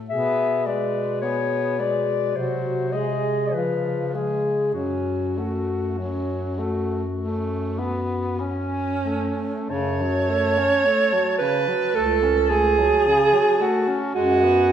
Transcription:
0.10 2.37 B2 soft
0.10 0.69 B3 medium
0.10 0.69 G#4 soft
0.10 0.68 E5 medium
0.66 1.24 G#3 soft
0.66 1.25 B4 soft
0.66 1.21 D5 medium
1.21 1.81 B3 soft
1.21 1.81 G#4 soft
1.21 1.81 C#5 medium
1.79 2.35 G#3 soft
1.79 2.36 B4 soft
1.79 2.38 D5 medium
2.35 3.55 C3 soft
2.35 2.95 F#3 soft
2.35 2.98 F#4 soft
2.35 2.94 C5 medium
2.92 3.53 G#3 soft
2.92 3.54 G#4 soft
2.92 3.55 D#5 medium
3.53 4.74 C#3 soft
3.53 4.16 F3 soft
3.53 4.16 F4 soft
3.53 4.16 B4 soft
4.14 4.74 G#3 soft
4.14 4.73 G#4 soft
4.14 4.74 G#4 soft
4.74 9.30 F#2 soft
4.74 5.39 F#3 soft
4.74 5.40 C#4 soft
4.74 9.00 F#4 soft
5.37 5.97 A3 soft
5.37 5.99 F#4 soft
5.98 6.60 F#3 soft
5.98 6.59 C#4 soft
6.58 7.02 A3 soft
6.58 7.02 F#4 soft
7.19 7.80 A3 soft
7.19 7.81 C#4 soft
7.79 8.41 B3 soft
7.79 8.38 F#4 soft
8.39 9.72 C#4 medium
8.39 9.04 C#4 soft
9.05 9.69 A3 soft
9.69 10.66 F#2 medium
9.69 10.03 C#3 medium
9.69 11.38 C#5 medium
9.69 14.11 A5 medium
10.02 10.31 F#3 soft
10.30 10.59 A3 soft
10.58 10.87 C#4 soft
10.85 11.14 A3 medium
11.13 11.42 F#3 soft
11.39 11.69 C#3 medium
11.39 11.97 B4 medium
11.68 11.94 F#3 soft
11.95 12.88 C#2 medium
11.95 12.24 A3 medium
11.95 12.52 A4 medium
12.23 12.53 C#4 medium
12.50 12.80 A3 soft
12.50 13.63 G#4 medium
12.79 13.08 F#3 medium
13.07 13.35 C#3 medium
13.33 13.63 F#3 medium
13.61 13.89 A3 medium
13.61 13.99 F#4 medium
13.88 14.14 C#4 soft
14.15 14.72 F#2 medium
14.15 14.45 G#3 medium
14.15 14.72 F#4 medium
14.15 14.72 G#5 medium
14.44 14.72 B3 medium

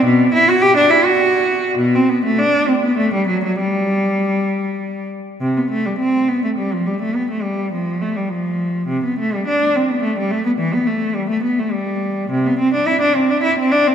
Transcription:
0.05 0.33 B2 medium
0.34 0.48 E4 medium
0.49 0.62 F#4 medium
0.61 0.76 G4 loud
0.77 0.91 D4 medium
0.90 1.05 E4 medium
1.04 1.78 F#4 medium
1.78 1.93 B2 medium
1.95 2.10 C4 medium
2.09 2.24 B3 medium
2.25 2.39 A3 medium
2.38 2.68 D4 medium
2.68 2.83 C4 medium
2.83 2.98 B3 medium
2.97 3.12 A3 medium
3.14 3.28 G3 medium
3.27 3.43 F#3 medium
3.44 3.59 F#3 medium
3.59 5.08 G3 medium
5.41 5.56 C3 medium
5.57 5.71 B3 medium
5.70 5.85 A3 medium
5.86 6.00 G3 medium
5.99 6.27 C4 medium
6.28 6.43 B3 medium
6.44 6.49 A3 medium
6.58 6.71 G3 medium
6.73 6.87 F3 medium
6.86 7.00 G3 medium
7.02 7.15 A3 medium
7.15 7.29 B3 medium
7.31 7.44 A3 medium
7.43 7.72 G3 medium
7.72 8.00 F3 medium
8.01 8.15 A3 medium
8.16 8.30 G3 soft
8.29 8.89 F3 medium
8.88 9.03 C3 medium
9.04 9.18 B3 soft
9.19 9.33 A3 medium
9.34 9.48 G3 medium
9.47 9.75 D4 medium
9.76 9.89 C4 medium
9.90 10.04 B3 medium
10.03 10.17 A3 medium
10.18 10.32 G3 medium
10.31 10.45 A3 medium
10.46 10.51 B3 medium
10.59 10.73 E3 medium
10.74 10.87 B3 medium
10.86 11.15 A3 medium
11.15 11.29 G3 medium
11.30 11.43 A3 medium
11.43 11.57 B3 medium
11.59 11.72 A3 medium
11.72 12.30 G3 medium
12.30 12.45 C3 medium
12.46 12.60 B3 medium
12.59 12.73 C4 medium
12.74 12.87 D4 medium
12.87 13.01 E4 medium
13.01 13.15 D4 medium
13.15 13.29 C4 medium
13.30 13.44 D4 medium
13.43 13.57 E4 medium
13.59 13.72 C4 medium
13.71 13.86 D4 medium
13.87 13.95 C4 medium

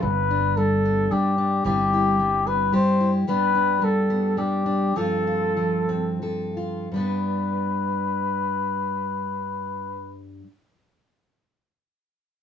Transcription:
0.02 1.07 G1 medium
0.02 1.64 G2 medium
0.02 0.59 B4 medium
0.31 1.11 D4 soft
0.57 1.11 G3 medium
0.57 1.13 A4 medium
0.85 1.62 B3 medium
1.11 1.65 G3 medium
1.11 1.37 D4 soft
1.11 1.65 G4 medium
1.38 1.65 D4 medium
1.64 2.69 G1 medium
1.64 3.26 G2 medium
1.64 2.19 G3 medium
1.64 2.46 C4 medium
1.64 1.92 E4 medium
1.64 2.48 G4 medium
1.93 2.99 E4 soft
2.19 2.71 G3 soft
2.47 3.24 C4 soft
2.47 2.74 B4 medium
2.72 3.24 G3 medium
2.72 4.96 G4 medium
2.72 3.12 C5 medium
3.01 3.24 E4 medium
3.27 4.95 G2 medium
3.27 3.80 G3 soft
3.27 4.09 B3 medium
3.27 3.54 D4 medium
3.27 3.86 B4 medium
3.55 4.37 D4 soft
3.81 4.36 G3 medium
3.81 4.40 A4 medium
4.10 4.92 B3 soft
4.37 4.92 G3 medium
4.37 4.65 D4 soft
4.37 4.98 G4 medium
4.66 4.95 D4 soft
4.96 6.90 G2 medium
4.96 5.56 F3 medium
4.96 5.88 C4 soft
4.96 5.26 F4 medium
4.96 6.22 A4 medium
5.27 6.56 F4 soft
5.57 6.21 F3 soft
5.89 6.88 C4 soft
6.22 6.92 F3 soft
6.22 6.88 A4 soft
6.57 6.88 F4 soft
6.92 10.42 G2 medium
6.92 10.44 G3 soft
6.92 10.24 B4 medium
6.96 10.46 B3 soft
6.96 10.48 D4 soft
7.00 10.50 B4 soft

